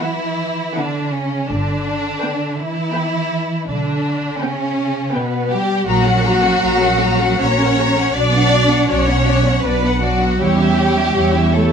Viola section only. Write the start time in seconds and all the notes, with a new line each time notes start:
0.00 B3 B4
0.76 B3 B4
2.22 B3 B4
2.94 B3 B4
4.42 B3 B4
5.13 B3 B4
5.87 A#3 F#4
6.06 C#4 A#4
6.25 A#3 F#4
6.43 C#4 A#4
6.61 A#3 F#4
6.79 C#4 A#4
6.99 A#3 F#4
7.20 C#4 A#4
7.40 A#3 F#4
7.59 C#4 A#4
7.77 A#3 F#4
7.95 C#4 A#4
8.14 D4 F#4
8.31 B3 D4
8.50 D4 F#4
8.69 B3 D4
8.87 D4 F#4
9.05 B3 D4
9.25 D4 F#4
9.43 B3 D4
9.62 D4 F#4
9.82 B3 D4
10.00 D4 F#4
10.20 B3 D4
10.39 E4 G4
10.59 C#4 E4
10.77 E4 G4
10.97 C#4 E4
11.17 E4 G4
11.35 C#4 E4
11.53 E4 G4